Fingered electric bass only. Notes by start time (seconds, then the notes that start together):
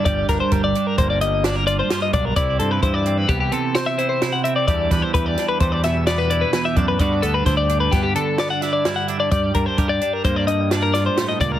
0.06 G1
0.29 G1
0.52 G1
0.98 G1
2.13 B1
2.37 C2
2.60 G2
2.82 G2
3.29 C2
4.67 E2
4.91 E2
5.14 E2
5.60 E2
6.76 F#2
7.00 G2
7.23 D2
7.46 D2
7.92 G2
9.32 G2
9.55 G2
9.78 G2
10.24 G2
11.41 C#2